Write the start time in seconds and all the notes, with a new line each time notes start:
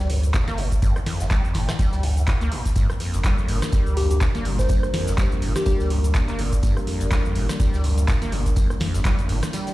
Already playing: G3
0.00 D2
0.10 F2, open hi-hat, tambourine
0.23 G2, closed hi-hat, shaker
0.34 A#2, kick, snare, clap, closed hi-hat, tambourine, shaker
0.48 G1 A#3, snare, closed hi-hat, shaker
0.57 A#2, open hi-hat, tambourine
0.72 kick, closed hi-hat, shaker
0.82 G1 G2, kick, closed hi-hat, tambourine, shaker
0.96 F2, cross-stick, shaker
1.06 F2, snare, open hi-hat, tambourine
1.20 G1 G2, snare, closed hi-hat, shaker
1.30 G3, kick, snare, clap, closed hi-hat, tambourine, shaker
1.44 F2, shaker
1.54 G1 A#2, snare, open hi-hat, tambourine
1.69 G2, cross-stick, snare, closed hi-hat, shaker
1.79 G3, kick, closed hi-hat, tambourine, shaker
1.92 D2, snare, closed hi-hat, shaker
2.03 F2, open hi-hat, tambourine
2.17 G2, closed hi-hat, shaker
2.27 A#2, kick, snare, clap, closed hi-hat, tambourine, shaker
2.41 D2 A#3, clap, closed hi-hat, shaker
2.52 A#2, open hi-hat, tambourine
2.65 kick, snare, closed hi-hat, shaker
2.75 G1 G2 G3 A#3 D4 A#4, kick, closed hi-hat, tambourine, shaker
2.90 F2, cross-stick, shaker
3.00 F2, open hi-hat, tambourine
3.14 G1 G2, closed hi-hat, shaker
3.24 G3, kick, snare, clap, closed hi-hat, tambourine, shaker
3.38 F2, shaker
3.48 G1 A#2, open hi-hat, tambourine
3.62 cross-stick, snare, closed hi-hat, shaker
3.72 G3, kick, closed hi-hat, tambourine, shaker
3.86 D2, shaker
3.97 F2 G4, open hi-hat, tambourine
4.11 G2 G4, closed hi-hat, shaker
4.21 A#2, kick, snare, clap, closed hi-hat, tambourine, shaker
4.35 G1 A#3, snare, closed hi-hat, shaker
4.45 A#2, open hi-hat, tambourine
4.59 G2 C5, kick, snare, closed hi-hat, shaker
4.69 G1 G2, kick, closed hi-hat, tambourine, shaker
4.83 F2, cross-stick, shaker
4.94 F2, snare, open hi-hat, tambourine
5.07 G1 G2, snare, closed hi-hat, shaker
5.18 G3, kick, snare, clap, closed hi-hat, tambourine, shaker
5.32 F2, shaker
5.42 G1 A#2, open hi-hat, tambourine
5.56 G4, cross-stick, snare, closed hi-hat, shaker
5.66 G3 G4, kick, closed hi-hat, tambourine, shaker
5.80 D2, snare, shaker
5.90 F2, open hi-hat, tambourine
6.04 G2, closed hi-hat, shaker
6.14 A#2, kick, snare, clap, closed hi-hat, tambourine, shaker
6.28 G1 A#3, clap, closed hi-hat, shaker
6.39 A#2, open hi-hat, tambourine
6.53 G2, kick, closed hi-hat, shaker
6.63 G1 G2, kick, closed hi-hat, tambourine, shaker
6.77 F2, cross-stick, shaker
6.87 F2, open hi-hat, tambourine
7.00 G1 G2, closed hi-hat, shaker
7.11 G3, kick, snare, clap, closed hi-hat, tambourine, shaker
7.25 F2, shaker
7.35 G1 A#2, open hi-hat, tambourine
7.49 cross-stick, snare, closed hi-hat, shaker
7.60 G3, kick, closed hi-hat, tambourine, shaker
7.73 D2, snare, shaker
7.84 F2, open hi-hat, tambourine
7.98 G2, closed hi-hat, shaker
8.08 A#2, kick, snare, clap, closed hi-hat, tambourine, shaker
8.22 G1 A#3, snare, closed hi-hat, shaker
8.32 A#2, open hi-hat, tambourine
8.46 G2, kick, closed hi-hat, shaker
8.56 G1 G2, kick, closed hi-hat, tambourine, shaker
8.70 F2, cross-stick, shaker
8.80 F2, snare, open hi-hat, tambourine
8.94 G1 G2, snare, closed hi-hat, shaker
9.05 G3, kick, snare, clap, closed hi-hat, tambourine, shaker
9.19 F2, closed hi-hat, shaker
9.29 G1 A#2, open hi-hat, tambourine
9.43 cross-stick, snare, closed hi-hat, shaker
9.53 G3, snare, closed hi-hat, tambourine, shaker
9.67 snare, closed hi-hat, shaker